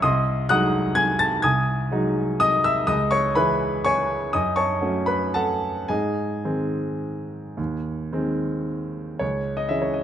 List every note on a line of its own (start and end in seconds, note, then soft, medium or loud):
0.02 0.48 C2 medium
0.02 0.46 D#5 medium
0.02 0.46 C6 medium
0.02 0.49 D#6 loud
0.49 1.40 F#3 medium
0.49 1.40 G#3 medium
0.49 1.40 D#4 medium
0.49 0.94 F#5 medium
0.49 0.94 D#6 medium
0.49 0.97 F#6 loud
0.95 1.19 G#5 medium
0.95 1.19 G#6 loud
1.19 1.42 A5 medium
1.19 1.43 A6 loud
1.42 1.91 C2 medium
1.42 2.13 G#5 medium
1.42 2.13 D#6 medium
1.42 2.17 G#6 loud
1.92 2.84 F#3 medium
1.92 2.85 G#3 medium
1.92 2.85 D#4 medium
2.40 2.63 D#5 medium
2.40 2.65 D#6 loud
2.64 2.87 E5 medium
2.64 2.88 E6 loud
2.87 3.34 C#2 medium
2.87 3.10 D#5 medium
2.87 3.11 D#6 loud
3.11 3.34 C#5 medium
3.11 3.35 C#6 loud
3.35 4.30 E3 medium
3.35 4.30 G#3 medium
3.35 4.31 E4 medium
3.35 3.82 B4 medium
3.35 3.85 B5 medium
3.85 4.31 C#5 medium
3.85 4.31 G#5 medium
3.85 4.34 C#6 loud
4.33 4.81 F#2 medium
4.33 4.56 D#5 medium
4.33 4.57 D#6 medium
4.56 5.04 C#5 medium
4.56 5.04 A5 medium
4.56 5.07 C#6 loud
4.81 5.85 F#3 soft
4.81 5.85 A3 soft
4.81 5.85 C#4 medium
5.06 5.33 B4 medium
5.06 5.34 B5 medium
5.34 5.86 A4 medium
5.34 5.86 F#5 medium
5.34 5.89 A5 loud
5.88 6.43 G#2 medium
5.88 8.64 G#4 medium
5.88 8.64 D#5 medium
5.88 8.67 G#5 medium
6.45 7.54 D#3 soft
6.45 7.54 G#3 soft
6.45 7.54 C4 medium
7.57 8.10 D#2 medium
8.12 9.17 D#3 medium
8.12 9.17 G#3 soft
8.12 9.17 C4 medium
9.19 9.68 C#2 medium
9.19 9.56 C#5 medium
9.57 9.69 D#5 medium
9.69 10.04 E3 soft
9.69 10.04 G#3 soft
9.69 10.04 C#4 soft
9.69 9.82 E5 medium
9.82 9.94 C#5 medium
9.94 10.04 D#5 medium